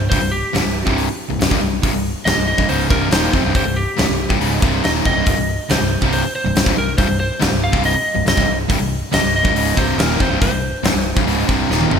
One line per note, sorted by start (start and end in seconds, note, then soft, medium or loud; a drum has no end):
0.10 0.21 C1 medium
0.10 0.21 C2 medium
0.10 0.21 G2 medium
0.10 0.30 C5 medium
0.10 kick loud
0.10 open hi-hat medium
0.22 0.42 C1 medium
0.22 0.39 C2 medium
0.22 0.39 G2 medium
0.32 0.92 G4 medium
0.53 0.64 C#1 medium
0.53 0.63 C#2 medium
0.53 0.64 G#2 medium
0.53 snare loud
0.53 open hi-hat medium
0.64 0.85 C1 medium
0.64 0.81 C2 soft
0.64 0.82 G2 medium
0.86 1.06 C1 medium
0.86 1.07 C2 medium
0.86 1.07 G2 medium
0.86 1.07 C3 medium
0.86 kick medium
0.98 open hi-hat medium
1.30 1.39 C1 medium
1.30 1.39 C2 medium
1.30 1.39 G2 medium
1.40 1.50 C1 medium
1.40 1.49 C2 medium
1.40 1.50 G2 medium
1.40 snare loud
1.40 open hi-hat medium
1.50 1.61 C1 medium
1.50 1.60 C2 medium
1.50 1.61 G2 medium
1.50 kick medium
1.61 1.81 C1 medium
1.61 1.79 C2 medium
1.61 1.79 G2 medium
1.83 1.92 C1 medium
1.83 1.93 C2 medium
1.83 1.93 G2 loud
1.83 kick loud
1.83 open hi-hat medium
1.93 2.13 C1 medium
1.93 2.11 C2 medium
1.93 2.11 G2 medium
2.25 2.36 C#1 medium
2.25 2.36 C#2 medium
2.25 2.36 G#2 medium
2.25 2.46 D#5 loud
2.25 snare loud
2.25 open hi-hat medium
2.36 2.57 C1 medium
2.36 2.53 C2 medium
2.36 2.54 G2 medium
2.47 2.67 D#5 loud
2.57 2.68 C1 medium
2.57 2.67 C2 medium
2.57 2.68 G2 medium
2.57 kick medium
2.68 2.89 C#1 medium
2.68 2.89 C#2 medium
2.68 2.88 G#2 medium
2.68 2.89 C#3 medium
2.68 2.90 C5 medium
2.68 open hi-hat medium
2.89 3.10 C1 medium
2.89 3.09 C2 medium
2.89 3.10 G2 medium
2.89 3.10 C3 medium
2.89 3.12 A#4 medium
2.89 kick loud
3.09 3.32 D#1 medium
3.09 3.31 D#2 medium
3.09 3.32 A#2 medium
3.09 3.32 D#3 medium
3.09 3.55 C5 medium
3.09 snare loud
3.09 open hi-hat medium
3.33 3.43 F1 medium
3.33 3.43 F2 medium
3.33 3.43 C3 loud
3.33 kick medium
3.44 3.54 C1 medium
3.44 3.53 C2 medium
3.44 3.53 G2 medium
3.54 3.65 C1 medium
3.54 3.64 C2 medium
3.54 3.65 G2 loud
3.54 3.77 C5 medium
3.54 kick loud
3.54 open hi-hat medium
3.65 3.85 C1 medium
3.65 3.82 C2 medium
3.65 3.83 G2 medium
3.76 4.37 G4 medium
3.97 4.08 C#1 medium
3.97 4.07 C#2 medium
3.97 4.08 G#2 medium
3.97 snare loud
3.97 open hi-hat medium
4.07 4.29 C1 medium
4.07 4.25 C2 medium
4.07 4.25 G2 medium
4.29 4.40 C1 medium
4.29 4.39 C2 medium
4.29 4.39 G2 loud
4.29 kick loud
4.39 4.61 C#1 medium
4.39 4.61 C#2 medium
4.39 4.61 G#2 medium
4.39 4.61 C#3 loud
4.39 open hi-hat medium
4.61 4.82 C1 medium
4.61 4.82 C2 medium
4.61 4.83 G2 medium
4.61 4.83 C3 medium
4.61 kick loud
4.83 5.04 D#1 medium
4.83 5.04 D#2 medium
4.83 5.04 A#2 medium
4.83 5.05 D#3 loud
4.83 4.90 D#5 medium
4.83 snare loud
4.83 open hi-hat medium
5.05 5.15 F1 medium
5.05 5.15 F2 medium
5.05 5.16 C3 medium
5.05 5.72 D#5 medium
5.05 kick loud
5.15 5.25 C1 medium
5.15 5.26 C2 medium
5.15 5.26 G2 medium
5.26 5.37 C1 medium
5.26 5.37 C2 medium
5.26 5.37 G2 loud
5.26 kick loud
5.26 open hi-hat medium
5.38 5.57 C1 medium
5.38 5.55 C2 medium
5.38 5.55 G2 medium
5.70 5.79 C#1 medium
5.70 5.80 C#2 medium
5.70 5.80 G#2 medium
5.70 6.12 C5 medium
5.70 snare loud
5.70 open hi-hat medium
5.81 6.00 C1 medium
5.81 5.98 C2 medium
5.81 5.98 G2 medium
6.01 6.21 C1 medium
6.01 6.23 C2 medium
6.01 6.23 G2 medium
6.01 6.23 C3 medium
6.01 kick medium
6.13 6.34 C5 medium
6.13 open hi-hat medium
6.35 6.78 C5 medium
6.45 6.55 C1 medium
6.45 6.55 C2 medium
6.45 6.56 G2 medium
6.55 6.65 C1 medium
6.55 6.65 C2 medium
6.55 6.66 G2 medium
6.55 snare loud
6.55 open hi-hat medium
6.66 6.76 C1 medium
6.66 6.76 C2 medium
6.66 6.76 G2 medium
6.66 kick loud
6.77 6.97 C1 medium
6.77 6.94 C2 medium
6.77 6.94 G2 medium
6.77 6.97 A#4 medium
6.98 7.08 C1 medium
6.98 7.07 C2 medium
6.98 7.08 G2 medium
6.98 7.19 C5 medium
6.98 kick loud
6.98 open hi-hat medium
7.08 7.29 C1 medium
7.08 7.26 C2 medium
7.08 7.26 G2 medium
7.20 7.59 C5 medium
7.40 7.51 C#1 medium
7.40 7.50 C#2 medium
7.40 7.51 G#2 medium
7.40 snare loud
7.40 open hi-hat medium
7.52 7.72 C1 medium
7.52 7.69 C2 medium
7.52 7.69 G2 medium
7.64 7.85 F5 loud
7.72 7.93 C1 medium
7.72 7.93 C2 medium
7.72 7.94 G2 medium
7.72 7.94 C3 loud
7.72 kick loud
7.84 8.24 D#5 loud
7.84 open hi-hat medium
8.14 8.26 C1 medium
8.14 8.25 C2 medium
8.14 8.25 G2 medium
8.26 8.37 C1 medium
8.26 8.34 C2 medium
8.26 8.35 G2 medium
8.26 8.57 D#5 medium
8.26 snare loud
8.26 open hi-hat medium
8.36 8.47 C1 medium
8.36 8.46 C2 medium
8.36 8.46 G2 medium
8.36 kick loud
8.47 8.69 C1 medium
8.47 8.65 C2 medium
8.47 8.65 G2 medium
8.69 8.80 C1 loud
8.69 8.78 C2 medium
8.69 8.79 G2 medium
8.69 kick loud
8.69 open hi-hat medium
8.80 9.00 C1 medium
8.80 8.97 C2 medium
8.80 8.97 G2 medium
9.12 9.23 C#1 medium
9.12 9.22 C#2 medium
9.12 9.22 G#2 medium
9.12 9.33 D#5 loud
9.12 snare loud
9.12 open hi-hat medium
9.22 9.43 C1 medium
9.22 9.40 C2 medium
9.22 9.40 G2 medium
9.36 9.79 D#5 loud
9.44 9.54 C1 medium
9.44 9.54 C2 medium
9.44 9.55 G2 medium
9.44 kick loud
9.55 9.75 C#1 loud
9.55 9.76 C#2 medium
9.55 9.76 G#2 medium
9.55 9.76 C#3 medium
9.55 open hi-hat medium
9.76 9.97 C1 medium
9.76 9.97 C2 medium
9.76 9.97 G2 medium
9.76 9.98 C3 loud
9.76 9.99 C5 medium
9.76 kick loud
9.98 10.18 D#1 medium
9.98 10.19 D#2 loud
9.98 10.19 A#2 medium
9.98 10.19 D#3 medium
9.98 10.21 A#4 medium
9.98 snare loud
9.98 open hi-hat medium
10.20 10.30 F1 medium
10.20 10.30 F2 medium
10.20 10.30 C3 medium
10.20 10.40 C5 medium
10.20 kick loud
10.30 10.40 C1 medium
10.30 10.39 C2 medium
10.30 10.40 G2 medium
10.41 10.51 C1 loud
10.41 10.50 C2 medium
10.41 10.51 G2 loud
10.41 11.66 C5 medium
10.41 kick loud
10.41 open hi-hat medium
10.51 10.71 C1 medium
10.51 10.69 C2 medium
10.51 10.69 G2 medium
10.83 10.93 C#1 medium
10.83 10.94 C#2 medium
10.83 10.94 G#2 medium
10.83 snare loud
10.83 open hi-hat medium
10.94 11.14 C1 medium
10.94 11.12 C2 medium
10.94 11.12 G2 medium
11.16 11.25 C1 medium
11.16 11.26 C2 medium
11.16 11.26 G2 medium
11.16 kick loud
11.26 11.46 C#1 medium
11.26 11.47 C#2 medium
11.26 11.47 G#2 loud
11.26 11.48 C#3 loud
11.26 open hi-hat soft
11.48 11.68 C1 medium
11.48 11.69 C2 medium
11.48 11.69 G2 medium
11.48 11.69 C3 medium
11.48 kick loud
11.70 11.89 D#1 medium
11.70 11.91 D#2 medium
11.70 11.91 A#2 medium
11.70 11.91 D#3 loud
11.70 snare medium
11.81 high tom medium
11.91 11.99 F1 medium
11.91 11.99 F2 medium
11.91 11.99 C3 medium
11.91 mid tom medium